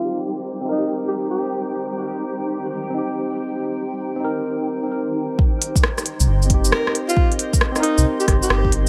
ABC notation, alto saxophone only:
X:1
M:4/4
L:1/16
Q:"Swing 16ths" 1/4=135
K:Cm
V:1 name="Alto saxophone"
F z4 z E2 z G G G3 z2 | z16 | z16 | z12 B2 z F- |
F z4 z E2 z G G G3 z2 |]